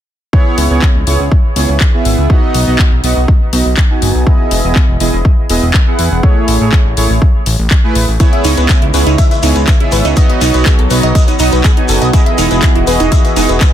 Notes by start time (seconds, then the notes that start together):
0.33 B3 E4 G#4 C#5, kick
0.58 C#2, open hi-hat
0.70 C#2 B3 E4 G#4 C#5
0.82 kick, clap
0.95 C#2
1.07 C#2 B3 E4 G#4 C#5, open hi-hat
1.20 C#2
1.32 kick
1.56 C#2 B3 E4 G#4 C#5, open hi-hat
1.69 C#2
1.80 kick, clap
1.93 B3 E4 G#4 E5
2.05 G#1, open hi-hat
2.18 C#2
2.30 B3 D#4 F#4 D#5, kick
2.54 B1, open hi-hat
2.67 B1 B3 D#4 F#4 D#5
2.79 kick, clap
2.92 B1
3.04 B1 B3 D#4 F#4 D#5, open hi-hat
3.16 B1
3.28 kick
3.53 B1 B3 D#4 F#4 D#5, open hi-hat
3.66 B1
3.77 kick, clap
3.90 B3 D#4 F#4 G#5
4.02 F#1, open hi-hat
4.15 B1
4.27 B3 E4 G#4 D#5, kick
4.51 E1, open hi-hat
4.64 E1 B3 E4 G#4 D#5
4.75 kick, clap
4.89 E1
5.00 E1 B3 E4 G#4 D#5, open hi-hat
5.13 E1
5.25 kick
5.49 E1 B3 E4 G#4 D#5, open hi-hat
5.62 E1
5.74 kick, clap
5.87 B3 E4 G#4 F#5
5.99 E2, open hi-hat
6.12 E1
6.23 A3 E4 G#4 C#5, kick
6.48 A1, open hi-hat
6.61 A1 A3 E4 G#4 C#5
6.72 kick, clap
6.85 A1
6.97 A1 A3 E4 G#4 C#5, open hi-hat
7.10 A1
7.22 kick
7.46 A1, open hi-hat
7.59 A1
7.71 kick, clap
7.84 A3 E4 G#4 B4
7.95 A1, open hi-hat
8.08 A1
8.20 C#3 G#3 B3 E4 G#4 C#5, kick, closed hi-hat, shekere
8.33 E5, closed hi-hat
8.44 C#2 D#4, open hi-hat, shekere
8.57 C#2 B3 E4 G#4 B4 C#5, closed hi-hat, shekere
8.69 E4, kick, clap, closed hi-hat, shekere
8.82 C#2 E4, closed hi-hat
8.94 C#2 B3 E4 G#4 B4 C#5, open hi-hat, shekere
9.07 C#2 D#4, closed hi-hat, shekere
9.18 E5, kick, closed hi-hat, shekere
9.31 E5, closed hi-hat, shekere
9.43 C#2 B3 D#4 E4 G#4 C#5, open hi-hat, shekere
9.56 C#2 B4, closed hi-hat, shekere
9.67 B4, kick, clap, closed hi-hat, shekere
9.80 B3 E4 G#4 E5, closed hi-hat
9.92 G#1 B4, open hi-hat, shekere
10.05 C#2 D#4, closed hi-hat, shekere
10.16 F#3 B3 D#4 F#4 D#5, kick, closed hi-hat, shekere
10.30 D#5, closed hi-hat
10.41 B1 D#4, open hi-hat, shekere
10.54 B1 B3 D#4 F#4 B4 D#5, closed hi-hat, shekere
10.66 G#4, kick, clap, closed hi-hat, shekere
10.79 B1 A4, closed hi-hat
10.90 B1 B3 D#4 F#4 B4 D#5, open hi-hat, shekere
11.03 B1 D#5, closed hi-hat, shekere
11.15 D#5, kick, closed hi-hat, shekere
11.28 D#4, closed hi-hat, shekere
11.39 B1 B3 D#4 F#4 D#5, open hi-hat, shekere
11.52 B1 B4, closed hi-hat, shekere
11.64 G#4, kick, clap, closed hi-hat, shekere
11.77 B3 D#4 F#4 G#5, closed hi-hat
11.88 F#1 A4, open hi-hat, shekere
12.01 B1 D#5, closed hi-hat, shekere
12.13 E3 B3 E4 F#4 G#4 D#5, kick, closed hi-hat, shekere
12.26 E5, closed hi-hat
12.38 E1 D#4, open hi-hat, shekere
12.51 E1 B3 E4 G#4 B4 D#5, closed hi-hat, shekere
12.62 E4, kick, clap, closed hi-hat, shekere
12.75 E1 E4, closed hi-hat
12.87 E1 B3 E4 G#4 B4 D#5, open hi-hat, shekere
13.00 E1 D#4, closed hi-hat, shekere
13.12 E5, kick, closed hi-hat, shekere
13.25 E5, closed hi-hat, shekere
13.36 E1 B3 D#4 E4 G#4 D#5, open hi-hat, shekere
13.49 E1 B4, closed hi-hat, shekere
13.61 B4, kick, clap, closed hi-hat, shekere